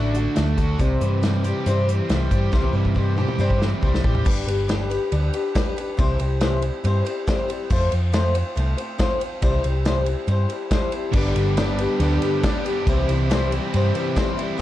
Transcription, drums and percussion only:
0.15 closed hi-hat medium
0.36 snare loud
0.36 closed hi-hat medium
0.58 kick medium
0.58 closed hi-hat medium
0.79 kick loud
0.79 closed hi-hat medium
1.01 closed hi-hat medium
1.23 snare loud
1.23 closed hi-hat medium
1.44 closed hi-hat medium
1.66 closed hi-hat medium
1.89 closed hi-hat medium
2.09 snare loud
2.09 closed hi-hat medium
2.31 kick medium
2.31 closed hi-hat medium
2.53 kick loud
2.53 snare medium
2.63 high tom soft
2.85 kick medium
2.96 kick medium
3.18 mid tom medium
3.28 mid tom medium
3.50 kick medium
3.62 snare medium
3.83 kick medium
3.94 snare medium
4.04 kick medium
4.15 floor tom medium
4.26 kick loud
4.26 crash loud
4.48 ride medium
4.69 snare loud
4.69 ride loud
4.91 ride medium
5.12 ride loud
5.34 ride medium
5.55 kick medium
5.55 snare loud
5.55 ride loud
5.78 ride medium
5.99 kick loud
5.99 ride medium
6.20 ride medium
6.41 snare loud
6.41 ride medium
6.62 ride medium
6.85 ride loud
7.06 ride medium
7.28 kick medium
7.28 snare loud
7.28 ride loud
7.50 ride medium
7.70 kick loud
7.70 crash loud
7.92 ride medium
8.13 snare loud
8.13 ride loud
8.35 ride medium
8.57 ride loud
8.78 ride medium
8.99 kick medium
8.99 snare loud
8.99 ride medium
9.21 ride medium
9.42 kick loud
9.42 ride loud
9.64 ride medium
9.85 snare loud
9.85 ride loud
10.06 ride medium
10.28 ride medium
10.50 ride medium
10.71 kick medium
10.71 snare loud
10.71 ride loud
10.92 ride medium
11.13 kick loud
11.13 crash loud
11.36 ride medium
11.57 snare loud
11.57 ride loud
11.79 ride medium
12.00 ride loud
12.22 ride medium
12.43 kick medium
12.43 snare loud
12.43 ride loud
12.66 ride medium
12.87 kick loud
12.87 ride medium
13.09 ride medium
13.31 snare loud
13.31 ride loud
13.52 ride medium
13.74 ride medium
13.95 ride medium
14.17 kick medium
14.17 snare loud
14.17 ride medium
14.39 ride medium

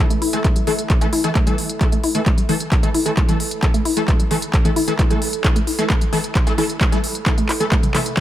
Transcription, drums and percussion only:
0.10 closed hi-hat medium
0.22 open hi-hat loud
0.33 closed hi-hat medium
0.44 kick loud
0.44 clap soft
0.44 closed hi-hat medium
0.56 closed hi-hat medium
0.67 open hi-hat loud
0.79 closed hi-hat medium
0.90 kick loud
0.90 clap medium
0.90 closed hi-hat medium
1.01 closed hi-hat medium
1.13 open hi-hat loud
1.24 closed hi-hat medium
1.35 kick loud
1.35 clap soft
1.35 closed hi-hat medium
1.47 closed hi-hat medium
1.58 open hi-hat loud
1.70 closed hi-hat medium
1.81 kick loud
1.81 clap soft
1.81 closed hi-hat medium
1.92 closed hi-hat medium
2.04 open hi-hat loud
2.15 closed hi-hat medium
2.26 kick loud
2.26 clap medium
2.26 closed hi-hat medium
2.38 closed hi-hat medium
2.49 open hi-hat loud
2.60 closed hi-hat medium
2.72 kick loud
2.72 clap medium
2.72 closed hi-hat medium
2.83 closed hi-hat medium
2.94 open hi-hat loud
3.06 closed hi-hat medium
3.17 kick loud
3.17 clap medium
3.17 closed hi-hat medium
3.29 closed hi-hat medium
3.40 open hi-hat loud
3.51 closed hi-hat medium
3.63 kick loud
3.63 clap medium
3.63 closed hi-hat medium
3.74 closed hi-hat medium
3.85 open hi-hat loud
3.97 closed hi-hat medium
4.08 kick loud
4.08 clap medium
4.08 closed hi-hat medium
4.20 closed hi-hat medium
4.31 open hi-hat loud
4.42 closed hi-hat medium
4.53 kick loud
4.53 clap medium
4.53 closed hi-hat medium
4.65 closed hi-hat medium
4.76 open hi-hat loud
4.88 closed hi-hat medium
4.99 kick loud
4.99 clap medium
4.99 closed hi-hat medium
5.10 closed hi-hat medium
5.22 open hi-hat loud
5.33 closed hi-hat medium
5.44 kick loud
5.44 clap medium
5.44 closed hi-hat medium
5.56 closed hi-hat medium
5.67 open hi-hat loud
5.79 closed hi-hat medium
5.90 kick loud
5.90 clap medium
5.90 closed hi-hat medium
6.01 closed hi-hat medium
6.13 open hi-hat loud
6.24 closed hi-hat medium
6.35 kick loud
6.35 clap medium
6.35 closed hi-hat medium
6.47 closed hi-hat medium
6.58 open hi-hat loud
6.70 closed hi-hat medium
6.81 kick loud
6.81 clap medium
6.81 closed hi-hat medium
6.92 closed hi-hat medium
7.04 open hi-hat loud
7.15 closed hi-hat medium
7.26 kick loud
7.26 clap medium
7.26 closed hi-hat medium
7.38 closed hi-hat medium
7.49 clap medium
7.49 open hi-hat loud
7.61 closed hi-hat medium
7.72 kick loud
7.72 clap medium
7.72 closed hi-hat medium
7.83 closed hi-hat medium
7.83 mid tom medium
7.95 clap medium
7.95 open hi-hat loud
7.95 mid tom medium
8.06 closed hi-hat medium
8.17 kick loud

